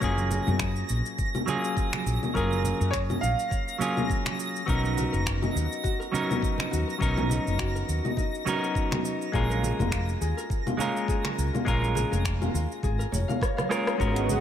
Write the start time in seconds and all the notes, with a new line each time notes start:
Already playing: A#6
0.00 F#1 F#3 A#3 C#4 F4 G#4, kick, shaker
0.17 high conga, shaker
0.31 low conga, shaker
0.47 F#2, low conga, shaker
0.59 finger snap, kick, shaker
0.76 shaker
0.89 A#1, shaker
1.06 shaker
1.18 kick, shaker
1.35 low conga, shaker
1.46 F#3 A#3 C#4 F4 G#4, low conga, shaker
1.64 shaker
1.77 kick, shaker
1.93 finger snap, high conga, low conga
2.06 A#1, shaker
2.23 low conga, shaker
2.34 F#1 F#3 A#3 C#4 F4 G#4 A#4, kick, shaker
2.51 high conga, shaker
2.64 low conga, shaker
2.80 F#2, shaker
2.91 C#5, finger snap, kick, shaker
3.10 low conga, shaker
3.21 A#1 F5, shaker
3.39 shaker
3.51 kick, shaker
3.68 shaker
3.78 F#3 A#3 C#4 F4 G#4, low conga, shaker
3.97 low conga, shaker
4.10 kick, shaker
4.26 finger snap, high conga, low conga, shaker
4.40 shaker
4.56 shaker
4.66 B1 F#3 B3 C#4 D#4 A#4, kick, shaker
4.84 high conga, shaker
4.97 F#4, low conga, shaker
5.12 F#1 A#4, shaker
5.26 finger snap, kick, shaker
5.42 D#4, low conga, shaker
5.55 D#2 D#4, shaker
5.72 shaker
5.83 F#4, kick, shaker
6.00 A#4, shaker
6.12 F#3 B3 C#4 D#4 A#4, low conga, shaker
6.29 D#4, low conga, shaker
6.42 D#4, kick, shaker
6.58 finger snap, high conga, low conga
6.71 D#2 F#4, shaker
6.87 A#4, shaker
6.99 B1 F#3 B3 C#4 D#4 A#4, kick, shaker
7.17 D#4, high conga, low conga, shaker
7.30 D#4, low conga, shaker
7.47 F#1, shaker
7.59 F#4, finger snap, kick, shaker
7.75 A#4, shaker
7.88 D#2, shaker
8.05 D#4, low conga, shaker
8.17 D#4, kick, shaker
8.35 shaker
8.45 F#3 B3 C#4 D#4 F#4 A#4, low conga, shaker
8.63 A#4, shaker
8.75 kick, shaker
8.91 D#4, finger snap, high conga, low conga, shaker
9.04 D#4, shaker
9.22 shaker
9.32 A#1 G#3 A#3 C#4 F4 G#4 A#4, kick, shaker
9.50 A#4, high conga, shaker
9.63 low conga, shaker
9.79 F1 F4, low conga, shaker
9.92 F4, finger snap, kick, shaker
10.09 shaker
10.21 D#2 G#4, shaker
10.37 A#4, shaker
10.50 kick, shaker
10.67 F4, low conga, shaker
10.77 G#3 A#3 C#4 F4 A#4, low conga, shaker
10.97 shaker
11.08 G#4, kick, shaker
11.24 A#4, finger snap, high conga, low conga
11.38 C#2, shaker
11.53 F4, low conga, shaker
11.65 A#1 G#3 A#3 C#4 F4 A#4, kick, shaker
11.82 high conga, shaker
11.95 G#4, low conga, shaker
12.12 F1 A#4, shaker
12.25 finger snap, kick, shaker
12.41 F4, low conga, shaker
12.54 D#2 F4, shaker
12.72 shaker
12.83 G#1 G#4, kick, shaker
12.99 A#4, shaker
13.12 F1 C#5, low conga, shaker
13.28 F5, low conga, shaker
13.41 C#5, kick, cross-stick, shaker
13.57 F5, cross-stick, high conga, low conga, shaker
13.69 G#3 A#3 C#4 F4 A#4 C#5, cross-stick, shaker
13.87 F4, cross-stick, shaker
13.98 G#1 G#3 B3 C#4 F#4 A#4, kick, shaker
14.16 D#4, closed hi-hat, shaker
14.29 F#4, high conga, low conga, shaker